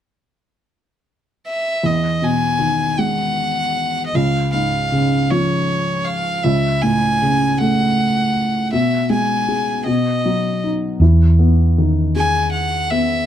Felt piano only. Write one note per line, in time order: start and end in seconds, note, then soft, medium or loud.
1.83 4.10 E2 soft
2.22 3.71 B2 soft
2.59 4.09 D#3 soft
2.98 4.10 G#3 soft
4.15 6.39 C#2 soft
4.53 6.01 G#2 soft
4.92 6.40 C#3 soft
5.31 6.41 F3 soft
6.44 8.68 C#2 soft
6.83 8.30 A2 soft
7.22 8.69 C#3 soft
7.61 8.70 A3 soft
8.73 9.83 B2 soft
9.10 9.84 G#3 soft
9.48 9.85 G#4 soft
9.86 10.98 B2 soft
10.25 11.00 F#3 soft
10.64 11.01 D#4 soft
11.02 13.26 E3 soft
11.39 12.88 B3 soft
11.78 13.26 D#3 soft
12.16 13.26 G#4 soft
12.91 13.26 B3 soft